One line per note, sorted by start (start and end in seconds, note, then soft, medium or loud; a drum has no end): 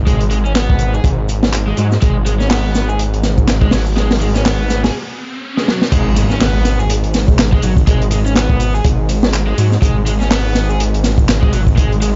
0.00 1.01 G#1 medium
0.07 0.20 G#3 loud
0.07 kick loud
0.07 closed hi-hat medium
0.07 shaker soft
0.20 closed hi-hat soft
0.31 0.36 G#3 loud
0.31 closed hi-hat medium
0.31 shaker medium
0.45 0.52 C#4 medium
0.45 shaker soft
0.55 0.93 B3 medium
0.55 snare loud
0.55 clap loud
0.55 closed hi-hat medium
0.55 shaker soft
0.70 kick medium
0.79 closed hi-hat medium
0.79 shaker medium
0.94 1.04 G#4 medium
0.94 shaker soft
1.04 1.73 G#1 medium
1.04 kick loud
1.04 closed hi-hat medium
1.04 shaker soft
1.29 closed hi-hat medium
1.29 shaker medium
1.43 snare loud
1.43 shaker soft
1.53 clap loud
1.53 closed hi-hat medium
1.53 shaker soft
1.67 1.77 G#3 medium
1.77 1.97 G#2 loud
1.77 1.86 F#3 medium
1.77 closed hi-hat medium
1.77 shaker medium
1.92 snare soft
1.92 shaker soft
2.02 3.69 G#1 loud
2.02 2.15 G#3 loud
2.02 kick loud
2.02 closed hi-hat medium
2.02 riser medium
2.02 shaker soft
2.26 2.32 G#3 loud
2.26 closed hi-hat medium
2.26 shaker medium
2.40 2.47 C#4 medium
2.40 snare soft
2.40 shaker soft
2.50 2.88 B3 medium
2.50 snare loud
2.50 clap loud
2.50 open hi-hat medium
2.50 shaker soft
2.75 snare medium
2.75 closed hi-hat medium
2.75 shaker medium
2.89 2.99 G#4 medium
2.89 shaker soft
2.99 closed hi-hat medium
2.99 shaker soft
3.14 closed hi-hat soft
3.23 snare medium
3.23 closed hi-hat medium
3.23 shaker medium
3.38 kick medium
3.38 shaker soft
3.48 snare loud
3.48 clap loud
3.48 closed hi-hat medium
3.48 shaker soft
3.61 3.71 G#3 medium
3.61 kick loud
3.71 4.91 G#1 loud
3.71 3.81 F#3 medium
3.71 snare loud
3.71 open hi-hat medium
3.71 shaker medium
3.87 shaker soft
3.96 4.10 G#3 loud
3.96 snare medium
3.96 closed hi-hat medium
3.96 shaker soft
4.11 snare loud
4.11 open hi-hat medium
4.21 4.27 G#3 loud
4.21 shaker medium
4.35 4.42 C#4 medium
4.35 snare medium
4.35 closed hi-hat medium
4.35 shaker soft
4.45 4.83 B3 medium
4.45 snare loud
4.45 clap loud
4.45 open hi-hat medium
4.45 shaker soft
4.70 snare medium
4.70 closed hi-hat medium
4.70 shaker medium
4.84 4.94 G#4 medium
4.84 snare loud
4.84 open hi-hat medium
4.84 shaker soft
5.57 5.67 G#3 medium
5.57 snare medium
5.68 5.77 F#3 medium
5.68 snare medium
5.82 snare medium
5.92 7.59 G#1 loud
5.92 6.05 G#3 loud
5.92 kick loud
5.92 closed hi-hat medium
5.92 crash medium
5.92 impact medium
5.92 shaker soft
6.16 6.22 G#3 loud
6.16 closed hi-hat medium
6.16 ride medium
6.16 shaker medium
6.30 6.37 C#4 medium
6.30 snare soft
6.30 shaker soft
6.41 6.78 B3 medium
6.41 snare loud
6.41 clap loud
6.41 open hi-hat medium
6.41 shaker soft
6.65 snare medium
6.65 closed hi-hat medium
6.65 ride medium
6.65 shaker medium
6.79 6.89 G#4 medium
6.79 shaker soft
6.90 closed hi-hat medium
6.90 shaker soft
7.04 closed hi-hat soft
7.14 snare medium
7.14 closed hi-hat medium
7.14 ride medium
7.14 shaker medium
7.28 kick loud
7.28 shaker soft
7.39 snare loud
7.39 clap loud
7.39 closed hi-hat medium
7.39 shaker soft
7.53 7.62 G#3 medium
7.53 kick loud
7.62 8.81 G#1 loud
7.62 7.72 F#3 medium
7.62 closed hi-hat medium
7.62 ride medium
7.62 shaker medium
7.77 kick medium
7.77 shaker soft
7.87 8.01 G#3 loud
7.87 kick loud
7.87 closed hi-hat medium
7.87 shaker soft
8.02 closed hi-hat soft
8.11 8.17 G#3 loud
8.11 closed hi-hat medium
8.11 ride medium
8.11 shaker medium
8.26 8.32 C#4 medium
8.26 shaker soft
8.36 8.73 B3 medium
8.36 snare loud
8.36 clap loud
8.36 closed hi-hat medium
8.36 shaker soft
8.50 kick medium
8.60 closed hi-hat medium
8.60 ride medium
8.60 shaker medium
8.75 8.84 G#4 medium
8.75 shaker soft
8.84 9.54 G#1 medium
8.84 kick loud
8.84 closed hi-hat medium
8.84 shaker soft
9.09 closed hi-hat medium
9.09 ride medium
9.09 shaker medium
9.23 snare loud
9.23 shaker soft
9.33 clap loud
9.33 closed hi-hat medium
9.33 shaker soft
9.48 9.57 G#3 medium
9.58 9.78 G#2 loud
9.58 9.67 F#3 medium
9.58 closed hi-hat medium
9.58 ride medium
9.58 shaker medium
9.72 snare soft
9.72 shaker soft
9.82 11.49 G#1 loud
9.82 9.95 G#3 loud
9.82 kick loud
9.82 closed hi-hat loud
9.82 shaker soft
10.06 10.12 G#3 loud
10.06 closed hi-hat medium
10.06 ride medium
10.06 shaker medium
10.21 10.27 C#4 medium
10.21 snare soft
10.21 shaker soft
10.31 10.68 B3 medium
10.31 snare loud
10.31 clap loud
10.31 open hi-hat medium
10.31 shaker soft
10.55 snare medium
10.55 closed hi-hat medium
10.55 ride medium
10.55 shaker medium
10.69 10.79 G#4 medium
10.69 shaker soft
10.80 closed hi-hat medium
10.80 shaker soft
10.94 closed hi-hat soft
11.04 snare medium
11.04 closed hi-hat medium
11.04 ride medium
11.04 shaker medium
11.18 kick medium
11.18 shaker soft
11.29 snare loud
11.29 clap loud
11.29 closed hi-hat medium
11.29 shaker soft
11.42 11.52 G#3 medium
11.42 kick loud
11.53 12.16 G#1 loud
11.53 11.62 F#3 medium
11.53 closed hi-hat medium
11.53 ride medium
11.53 shaker medium
11.67 kick loud
11.67 shaker soft
11.77 11.90 G#3 loud
11.77 kick loud
11.77 closed hi-hat medium
11.77 shaker soft
11.92 closed hi-hat soft
12.02 12.07 G#3 loud
12.02 closed hi-hat medium
12.02 ride medium
12.02 shaker medium